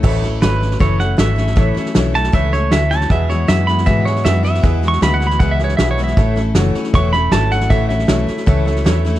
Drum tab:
CC |x---------------|----------------|----------------|----------------|
HH |----p-------p---|----p-------p---|----p-------p---|----p-------p---|
SD |o-o-o-ooo-o-o-oo|o-ooo-ooo-o-o-oo|o-o-o-ooo-ooo-oo|o-ooo-ooo-ooo-oo|
BD |o-------o-------|o-------o-------|o-------o-------|o-------o-------|

CC |----------------|----------------|
HH |----p-------p---|----p-------p---|
SD |o-o-o-ooo-o-o-oo|o-ooo-ooo-ooo-oo|
BD |o-------o-------|o-------o-------|